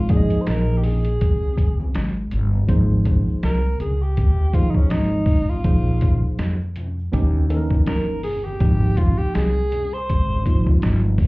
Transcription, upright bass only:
Already playing: G#1
0.31 muted upright bass stroke
0.47 A#1
1.22 C2
1.95 G#1
2.32 G1
2.69 G#1
3.28 muted upright bass stroke
3.43 C2
3.80 C#2
4.18 D#2
4.91 G#1
5.65 A#1
6.24 muted upright bass stroke
6.39 F2
7.14 D#2
7.87 G1
8.61 G#1
9.20 muted upright bass stroke
9.35 C2
10.10 G#1
10.83 G1

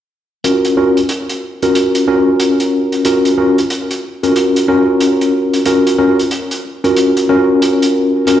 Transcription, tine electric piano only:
0.44 C#4 F4 F#4 A#4
0.77 C#4 F4 F#4 A#4
1.63 C#4 F4 F#4 A#4
2.08 C#4 F4 F#4 A#4
3.05 C#4 F4 F#4 A#4
3.38 C#4 F4 F#4 A#4
4.23 C#4 F4 F#4 A#4
4.68 C#4 F4 F#4 A#4
5.66 C#4 F4 F#4 A#4
5.98 C#4 F4 F#4 A#4
6.84 C#4 F4 F#4 A#4
7.29 C#4 F4 F#4 A#4
8.27 C#4 F4 F#4 A#4

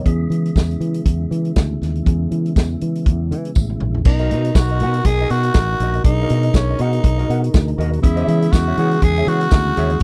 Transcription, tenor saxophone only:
4.06 D#4
4.56 F#4
5.06 G#4
5.31 F#4
6.05 D#4
6.56 C#4
6.81 D#4
8.03 E4
8.52 F#4
9.03 G#4
9.28 F#4

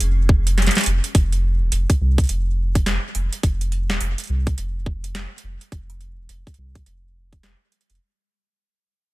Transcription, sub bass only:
0.01 F1
0.86 F1
1.15 F1
1.61 D#1
1.72 F1
2.01 C2
2.29 F1
3.15 F1
3.43 F1
3.90 D#1
4.01 F1
4.29 C2
4.58 F1
5.43 F1
5.72 F1
6.18 D#1
6.29 F1
6.58 C2
6.86 F1
7.90 F1

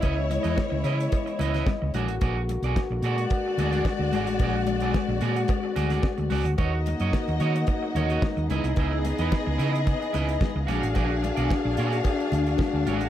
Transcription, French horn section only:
Already playing: C#3 E3 B3 D#5
1.94 D3 G#3 A#3 F#4
4.14 C4
6.59 C#3 F#3 A#3 D#4
8.48 E3 B3
10.69 D3 G#3 A#3 F#4

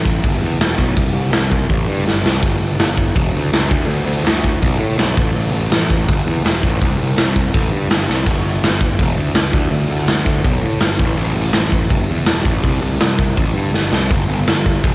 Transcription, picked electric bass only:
Already playing: A1
0.23 G1
0.41 E2
0.59 E1
0.78 B1
0.96 C2
1.14 C2
1.32 C2
1.69 A1
1.88 G2
2.06 G1
2.23 C2
2.43 G1
2.60 G1
2.78 G1
3.16 E1
3.33 D2
3.52 C#2
3.71 D2
3.87 D2
4.05 D2
4.24 D2
4.62 B1
4.79 A2
4.97 B1
5.17 A1
5.35 A1
5.52 A1
5.71 A1
6.08 G1
6.26 E2
6.44 E1
6.63 A1
6.81 C2
6.99 C2
7.18 C2
7.54 A1
7.71 G2
7.89 G1
8.09 C2
8.26 G1
8.44 G1
8.63 G1
8.99 E1
9.17 D2
9.35 C#2
9.53 D2
9.71 D2
9.90 D2
10.09 D2
10.44 B1
10.62 A2
10.81 G1
10.99 A1
11.17 A1
11.35 A1
11.53 A1
11.90 G1
12.09 E2
12.28 E1
12.45 A1
12.64 C2
12.82 C2
13.01 C2
13.38 A1
13.54 G2
13.73 G1
13.92 C2
14.11 G1
14.29 G1
14.48 G1
14.84 E1

